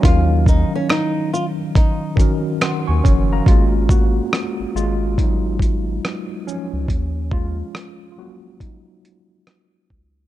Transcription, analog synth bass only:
X:1
M:4/4
L:1/16
Q:"Swing 16ths" 1/4=70
K:Ebm
V:1 name="Analog synth bass" clef=bass
E,,3 z8 z2 E,, G,,,2 | A,,,4 z A,,, A,,,6 z3 D,, | E,,4 z8 z2 D,,2 |]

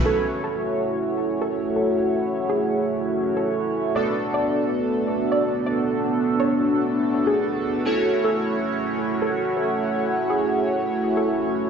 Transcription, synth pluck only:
X:1
M:4/4
L:1/16
Q:"Swing 16ths" 1/4=123
K:F#m
V:1 name="Synth pluck"
A3 A3 z4 z A3 A2- | A z3 G3 z4 A2 z3 | d3 d3 z4 z d3 d2- | d z3 c3 z4 G2 z3 |
A3 A3 z4 z A3 A2- | A z3 G3 z4 A2 z3 |]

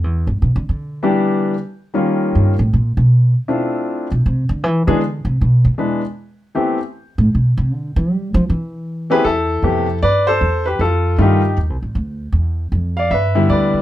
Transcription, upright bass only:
X:1
M:4/4
L:1/16
Q:"Swing" 1/4=156
K:Am
V:1 name="Upright bass" clef=bass
E,,2 G,,2 (3B,,2 D,2 D,2- D,8 | z8 G,,2 A,,2 ^A,,2 B,,2- | B,,2 z8 B,,2 C,2 D,2 | E,2 ^D,2 =D,2 C,2 B,,2 E,,2 z4 |
z8 z2 A,,2 B,,2 C,2 | D,2 E,2 G,2 F,2 E,6- E, z | E,,4 F,,4 G,,4 E,,4 | F,,4 G,,4 (3_E,,2 C,,2 A,,,2 D,,4 |
E,,4 F,,4 G,,4 D,,2 z2 |]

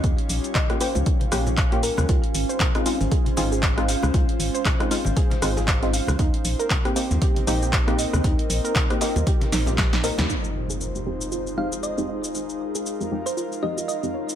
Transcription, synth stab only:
X:1
M:4/4
L:1/16
Q:"Swing 16ths" 1/4=117
K:Fm
V:1 name="Synth stab"
z4 z [B,DFG] [B,DFG] z3 [B,DFG] z2 [B,DFG] z2 | z4 z [A,CEF] [A,CEF] z3 [A,CEF] z2 [A,CEF] z2 | z4 z [A,CEF] [A,CEF] z3 [A,CEF] z2 [A,CEF] z2 | z4 z [B,CEG] [B,CEG] z3 [B,CEG] z2 [B,CEG] z2 |
z4 z [B,CEG] [B,CEG] z6 z [B,CEB] [B,CEG] | z4 z [F,,A,CEG] [F,,A,CEG] z3 [F,,A,CEG] z2 [F,,A,CEG] z2 | z4 z [F,,A,CEG] [F,,A,CEG] z3 [F,,A,CEG] z2 [F,,A,CEG] z2 |]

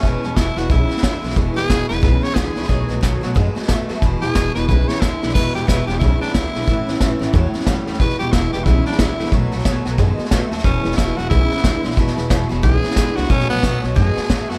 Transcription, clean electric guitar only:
X:1
M:4/4
L:1/8
Q:"Swing" 1/4=181
K:E
V:1 name="Clean electric guitar" clef=bass
[E,,B,,]2 [E,,B,,] [E,,B,,] [E,,C,]2 [E,,=D,] [E,,D,] | [E,,B,,]2 [E,,B,,] [E,,B,,] [E,,C,]2 [E,,=D,] [E,,D,] | [B,,F,]2 [B,,F,] [B,,F,] [B,,G,]2 [B,,A,] [B,,A,] | [E,,B,,]2 [E,,B,,] [E,,B,,] [E,,C,]2 [E,,=D,] [E,,D,] |
[E,,B,,]2 [E,,B,,] [E,,B,,] [E,,C,]2 [E,,=D,] [E,,D,] | [A,,E,]2 [A,,E,] [A,,E,] [A,,F,]2 [A,,=G,] [A,,G,] | [E,,B,,]2 [E,,B,,] [E,,B,,] [E,,C,]2 [E,,=D,] [E,,D,] | [B,,F,]2 [B,,F,] [B,,F,] [B,,G,]2 [B,,A,] [B,,A,] |
[E,,B,,]2 [E,,B,,] [E,,B,,] [E,,C,]2 [E,,=D,] [E,,D,] | [E,,B,,]2 [E,,B,,] [E,,B,,] [E,,C,]2 [E,,=D,] [E,,D,] | [B,,F,]2 [B,,F,] [B,,F,] [B,,G,]2 [B,,A,] [B,,A,] |]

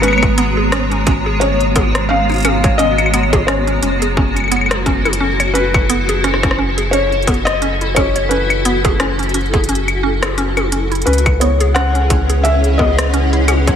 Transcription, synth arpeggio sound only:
X:1
M:4/4
L:1/16
Q:"Swing 16ths" 1/4=87
K:F#dor
V:1 name="Synth arpeggio sound"
C z B, G C C C G C z B, z C D C c | C z B, G C C C G C z B, z C E C c | C z B, G C C C G C z B, z C E C c | C z B, G C C C G C z C z C C C E |
C z B, G C C C G C z B, z C E C c |]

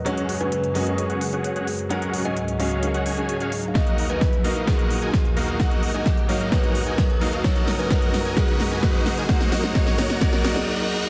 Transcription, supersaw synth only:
X:1
M:4/4
L:1/16
Q:1/4=130
K:Ebm
V:1 name="Supersaw synth"
[DGAdg]3 [DGAda] z2 [DGAde]3 [DGAdg] z [DGAdg]2 [DGAdg] z2 | [DGAdg]3 [DGAda] z2 [DGAdf]3 [DGAdg] [DGAda]3 [DGAdf] z2 | [EGBeg]3 [EGBea] z2 [EGBef]2 [EGBeg]3 [EGBea] z2 [EGBef]2 | [EGBeg]3 [EGBea] z2 [EGBef]2 [EGBeg]3 [EGBea] z2 [EGBef]2 |
[EGBeg]3 [EGBea] [EGBeg]3 [EGBea] [EGBeg]3 [EGBea] [EGBeg]3 [EGBea] | [EGBeg]2 [EGBeg]2 [EGBeg]2 [EGBeg]2 [EGBeg]2 [EGBeg]2 [EGBeg]2 [EGBeg]2 |]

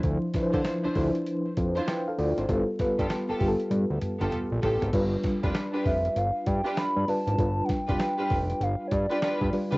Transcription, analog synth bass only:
X:1
M:4/4
L:1/16
Q:"Swing 16ths" 1/4=98
K:Gmix
V:1 name="Analog synth bass" clef=bass
D,, z D, D, z D,, D,, z3 F,,2 z2 D,, ^G,,, | G,,, z G,, G,, z G,,, G,,, z G,, D,, z G,,, z _B,,, A,,, ^G,,, | G,,,2 z F,,, z2 F,,,2 G,,, z G,, z2 G,, z ^G,,, | G,,,2 z F,,, z2 F,,,2 G,,, z G,, z2 G,, z ^C,, |]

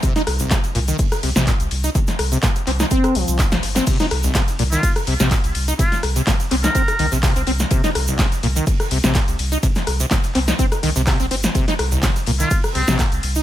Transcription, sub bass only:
X:1
M:4/4
L:1/16
Q:"Swing 16ths" 1/4=125
K:Cm
V:1 name="Sub bass" clef=bass
z2 C,, z3 C,, z3 C,, B,,, z C,, C,, z | z2 C,, z3 C,, z3 C,, C,, z B,,, G,,, z | z2 C,, z3 C,, z3 C,, B,,, z C,, C,, z | z2 C,, z3 C,, z3 C,, B,,, z C,, C,, z |
z2 C,, z3 C,, z3 C,, B,,, z C,, C,, z | z2 C,, z3 C,, z3 C,, C,, z B,,, G,,, z | z2 C,, z3 C,, z3 C,, B,,, z C,, C,, z |]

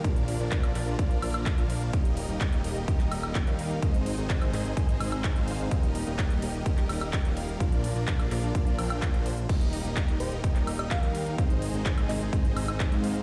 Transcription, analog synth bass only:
X:1
M:4/4
L:1/16
Q:1/4=127
K:Eb
V:1 name="Analog synth bass" clef=bass
B,,,3 B,,,3 B,,,2 B,,,2 B,,,3 B,,,3 | E,,,3 E,,,3 E,,,2 E,,,2 E,,,3 E,,3 | A,,,3 A,,,3 A,,,2 A,,,2 A,,,3 A,,,3 | E,,,3 E,,,3 E,,,2 E,,,2 E,,,3 E,,,3 |
B,,,3 B,,,3 B,,,2 B,,,2 B,,,3 B,,,3 | E,,,3 E,,,3 E,,,2 E,,,2 E,,,3 E,,3 | A,,,3 A,,,3 A,,,2 A,,,2 A,,,3 A,,3 |]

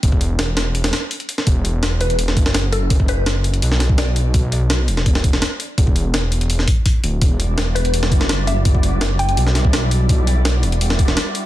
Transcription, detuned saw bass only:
X:1
M:4/4
L:1/16
Q:1/4=167
K:Em
V:1 name="Detuned saw bass" clef=bass
E,,,8- E,,,2 z6 | E,,,8- E,,,2 F,,,6- | F,,,8 B,,,8- | B,,,6 E,,,4- E,,, E,,, z4 |
E,,,8- E,,,2 z4 D,,,2 | E,,,8- E,,,2 F,,,6- | F,,,8 B,,,8- | B,,,6 E,,,4- E,,, E,,, z4 |]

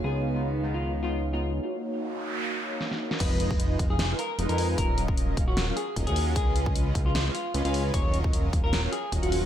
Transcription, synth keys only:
X:1
M:4/4
L:1/16
Q:"Swing 16ths" 1/4=152
K:Ebm
V:1 name="Synth keys"
[A,CEF] z2 [A,CEF] z2 [A,CEF] z3 [A,CEF] z2 [A,CEF] z2 | z16 | z16 | z16 |
z16 | z16 |]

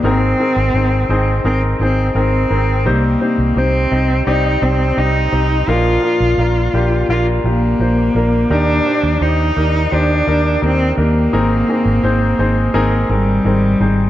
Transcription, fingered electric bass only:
X:1
M:4/4
L:1/16
Q:1/4=85
K:Ablyd
V:1 name="Fingered electric bass" clef=bass
A,,,2 z A,,, A,,,2 A,,,2 A,,,2 A,,,2 A,,,2 A,,,2 | C,,2 z C,, C,,2 C,,2 C,,2 C,,2 C,,2 C,,2 | B,,,2 z B,,, B,,,2 B,,,2 B,,,2 B,,,2 B,,,2 B,,,2 | E,,2 z E,, E,,2 E,,2 E,,2 E,,2 E,,2 E,,2 |
A,,,2 z A,,, A,,,2 A,,,2 A,,,2 A,,,2 A,,,2 A,,,2 |]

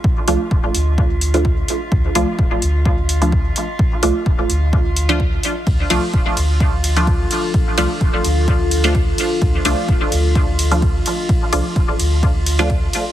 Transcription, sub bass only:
X:1
M:4/4
L:1/8
Q:"Swing 16ths" 1/4=128
K:Dm
V:1 name="Sub bass" clef=bass
z C,, D,,, D,,4 z | D,, C,, D,,, D,,4 z | z C,, D,,, D,,4 z | D,, C,, D,,, D,,4 z |
z C,, D,,, D,,4 z | D,, C,, D,,, D,,4 z | z C,, D,,, D,,4 z |]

